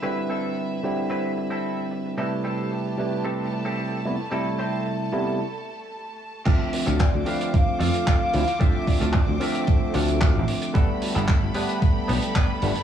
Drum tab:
CC |----------------|----------------|----------------|x---------------|
HH |x-xxxxxxxxxxxxxx|xxxxxxxxxxxxxxxx|xxxxxxxx--------|x-oxx-oxx-oxx-ox|
CP |----------------|----------------|----------------|----x-------x---|
BD |----------------|----------------|----------------|o---o---o---o---|

CC |----------------|----------------|
HH |x-oxx-oxx-oxx-ox|x-oxx-oxx-oxx-ox|
CP |----x-------x---|----x-------x---|
BD |o-o-o---o---o---|o---o---o---o---|